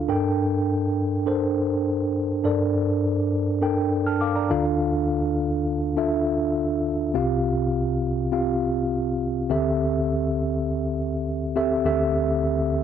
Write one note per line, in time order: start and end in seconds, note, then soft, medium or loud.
0.00 0.08 D4 medium
0.00 0.11 F4 medium
0.00 0.09 A4 medium
0.00 0.11 F5 medium
0.08 2.40 G2 medium
0.08 0.89 D4 medium
0.08 0.89 A4 medium
0.08 0.90 A#4 medium
0.08 0.90 G5 medium
1.26 2.07 D4 medium
1.26 2.07 A4 medium
1.26 2.07 A#4 medium
1.26 2.07 C5 medium
2.44 4.46 G2 medium
2.44 3.25 D4 medium
2.44 3.25 A4 medium
2.44 3.25 A#4 medium
2.44 3.25 D5 medium
3.62 4.42 D4 medium
3.62 4.43 A4 medium
3.62 4.43 A#4 medium
3.62 3.92 G5 medium
4.06 4.21 A5 medium
4.06 4.20 F6 medium
4.21 4.35 F5 medium
4.21 4.35 D6 medium
4.36 4.64 D5 soft
4.36 4.64 A#5 medium
4.50 6.82 D2 medium
4.50 6.82 D3 medium
4.50 5.44 D4 medium
4.50 5.44 F4 medium
4.50 5.45 A4 medium
4.50 5.45 F5 medium
5.97 6.78 D4 medium
5.97 6.78 F4 medium
5.97 6.78 A4 medium
5.97 6.78 E5 medium
7.14 9.46 C2 medium
7.14 9.46 C3 medium
7.14 7.95 C4 medium
7.14 7.95 F4 medium
7.14 7.96 G4 medium
7.14 7.96 F5 medium
8.32 9.13 C4 medium
8.32 9.13 F4 medium
8.32 9.13 G4 medium
8.32 9.13 F5 medium
9.50 11.82 D2 medium
9.50 11.82 D3 medium
9.50 10.31 C4 medium
9.50 10.31 G4 medium
9.50 10.31 A4 medium
9.50 10.31 E5 medium
11.56 11.76 C4 medium
11.56 11.76 G4 medium
11.56 11.76 A4 medium
11.56 11.77 E5 medium
11.85 12.84 D2 medium
11.85 12.84 D3 medium
11.85 12.66 C4 medium
11.85 12.66 G4 medium
11.85 12.66 A4 medium
11.85 12.66 E5 medium